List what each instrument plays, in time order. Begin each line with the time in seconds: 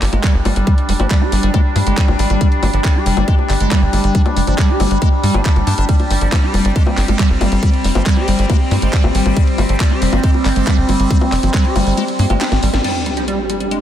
Already playing: synth drone G3 D4
0.02 analog synth bass G1, acid bass G3, clap, open hi-hat
0.13 analog synth bass G1, acid bass G#3, closed hi-hat, high bongo
0.24 acid bass G3, kick, clap, closed hi-hat
0.34 analog synth bass G1
0.45 analog synth bass G1, acid bass G3, open hi-hat, high bongo
0.56 analog synth bass G1, acid bass G3, closed hi-hat
0.67 acid bass G3, kick, closed hi-hat, high bongo
0.78 closed hi-hat
0.89 analog synth bass F1, acid bass G3, open hi-hat
1.00 analog synth bass G1, acid bass F3, closed hi-hat, high bongo
1.11 acid bass G3, kick, clap, closed hi-hat
1.21 acid bass G4, high bongo
1.32 analog synth bass G1, acid bass G3, open hi-hat
1.43 analog synth bass G1, acid bass G3, closed hi-hat
1.54 acid bass G#3, kick, closed hi-hat, high bongo
1.76 analog synth bass G2, acid bass G3, open hi-hat, high bongo
1.87 analog synth bass G1, acid bass G#3, closed hi-hat
1.97 acid bass G3, kick, clap, closed hi-hat
2.08 analog synth bass G#1, high bongo
2.19 analog synth bass G#1, acid bass G3, open hi-hat
2.30 analog synth bass G#1, acid bass G3, closed hi-hat, high bongo
2.41 acid bass G3, kick, closed hi-hat
2.52 closed hi-hat
2.63 analog synth bass G1, acid bass G3, open hi-hat, high bongo
2.73 analog synth bass G1, acid bass F3, closed hi-hat
2.84 acid bass G3, kick, clap, closed hi-hat, high bongo
2.95 acid bass G4
3.06 analog synth bass F1, acid bass G3, open hi-hat
3.17 analog synth bass G1, acid bass G3, closed hi-hat, high bongo
3.28 acid bass G#3, kick, closed hi-hat
3.39 high bongo
3.50 analog synth bass G1, acid bass G3, clap, open hi-hat
3.60 analog synth bass G1, acid bass G#3, closed hi-hat
3.71 acid bass G3, kick, clap, closed hi-hat, high bongo
3.82 analog synth bass G1
3.93 analog synth bass G1, acid bass G3, open hi-hat, high bongo
4.04 analog synth bass G1, acid bass G3, closed hi-hat
4.15 acid bass G3, kick, closed hi-hat
4.26 closed hi-hat, high bongo
4.37 analog synth bass F1, acid bass G3, open hi-hat
4.47 analog synth bass G1, acid bass F3, closed hi-hat, high bongo
4.58 acid bass G3, kick, clap, closed hi-hat
4.69 acid bass G4
4.80 analog synth bass G1, acid bass G3, open hi-hat, high bongo
4.91 analog synth bass G1, acid bass G3, closed hi-hat
5.02 acid bass G#3, kick, closed hi-hat, high bongo
5.24 analog synth bass G2, acid bass G3, open hi-hat
5.34 analog synth bass G1, acid bass A#3, closed hi-hat, high bongo
5.45 acid bass G3, kick, clap, closed hi-hat
5.56 analog synth bass G1, closed hi-hat, high bongo
5.67 analog synth bass G2, acid bass D4, open hi-hat
5.78 analog synth bass G1, acid bass D4, closed hi-hat
5.89 acid bass G3, synth drone C4, kick, closed hi-hat, ride
6.00 closed hi-hat, high bongo
6.10 analog synth bass G1, acid bass G3, open hi-hat
6.21 analog synth bass G1, acid bass F3, closed hi-hat
6.32 acid bass G3, kick, clap, closed hi-hat, ride, high bongo
6.43 acid bass G4
6.54 analog synth bass F1, acid bass G3, open hi-hat, high bongo
6.65 analog synth bass G1, acid bass G3, closed hi-hat
6.76 acid bass G#3, kick, closed hi-hat, ride
6.87 high bongo
6.97 analog synth bass G1, acid bass G3, clap, open hi-hat
7.08 analog synth bass G1, acid bass G#3, closed hi-hat, high bongo
7.19 acid bass G3, kick, clap, closed hi-hat, ride
7.30 analog synth bass G1
7.41 analog synth bass G1, acid bass G3, open hi-hat, high bongo
7.52 analog synth bass G1, acid bass G3, closed hi-hat
7.63 acid bass G3, kick, closed hi-hat, ride, high bongo
7.74 closed hi-hat
7.84 analog synth bass F1, acid bass G3, open hi-hat
7.95 analog synth bass G1, acid bass F3, closed hi-hat, high bongo
8.06 acid bass G3, kick, clap, closed hi-hat, ride
8.17 acid bass G4, high bongo
8.28 analog synth bass G1, acid bass G3, open hi-hat
8.39 analog synth bass G1, acid bass G3, closed hi-hat
8.50 acid bass G#3, kick, closed hi-hat, ride, high bongo
8.71 analog synth bass G2, acid bass G3, open hi-hat, high bongo
8.82 analog synth bass G1, acid bass G#3, closed hi-hat
8.93 acid bass G3, kick, clap, closed hi-hat, ride
9.04 analog synth bass G#1, high bongo
9.15 analog synth bass G#1, acid bass G3, open hi-hat
9.26 analog synth bass G#1, acid bass G3, closed hi-hat, high bongo
9.37 acid bass G3, kick, closed hi-hat, ride
9.47 closed hi-hat
9.58 analog synth bass G1, acid bass G3, open hi-hat, high bongo
9.69 analog synth bass G1, acid bass F3, closed hi-hat
9.80 acid bass G3, kick, clap, closed hi-hat, ride, high bongo
9.91 acid bass G4
10.02 analog synth bass F1, acid bass G3, open hi-hat
10.13 analog synth bass G1, acid bass G3, closed hi-hat, high bongo
10.24 acid bass G#3, kick, closed hi-hat, ride
10.34 high bongo
10.45 analog synth bass G1, acid bass G3, clap, open hi-hat
10.56 analog synth bass G1, acid bass G#3, closed hi-hat
10.67 acid bass G3, kick, clap, closed hi-hat, ride, high bongo
10.78 analog synth bass G1
10.89 analog synth bass G1, acid bass G3, open hi-hat, high bongo
11.00 analog synth bass G1, acid bass G3, closed hi-hat
11.10 acid bass G3, kick, closed hi-hat, ride
11.21 closed hi-hat, high bongo
11.32 analog synth bass F1, acid bass G3, clap, open hi-hat
11.43 analog synth bass G1, acid bass F3, closed hi-hat, high bongo
11.54 acid bass G3, kick, clap, closed hi-hat, ride
11.65 acid bass G4, closed hi-hat
11.76 analog synth bass G1, acid bass G3, open hi-hat, high bongo
11.87 analog synth bass G1, acid bass G3, open hi-hat
11.97 acid bass G#3, closed hi-hat, ride, high bongo
12.08 closed hi-hat
12.19 analog synth bass G2, acid bass A#3, open hi-hat
12.30 analog synth bass G1, acid bass G#3, closed hi-hat, high bongo
12.41 acid bass D4, snare, clap, closed hi-hat, ride
12.52 analog synth bass G#1, snare, closed hi-hat, high bongo
12.63 analog synth bass G#1, acid bass G3, open hi-hat
12.74 analog synth bass G#1, acid bass G3, snare, closed hi-hat, zap
12.84 acid bass G3, synth drone G3 D4, analog synth pad D4, closed hi-hat, crash, sub drop
12.95 analog synth pad G4, closed hi-hat
13.06 acid bass G3, analog synth pad G5, closed hi-hat
13.17 acid bass F3, closed hi-hat
13.28 acid bass G3, closed hi-hat
13.39 acid bass G4
13.49 acid bass G3, analog synth pad D6, closed hi-hat
13.60 acid bass G3, closed hi-hat
13.71 acid bass G#3, closed hi-hat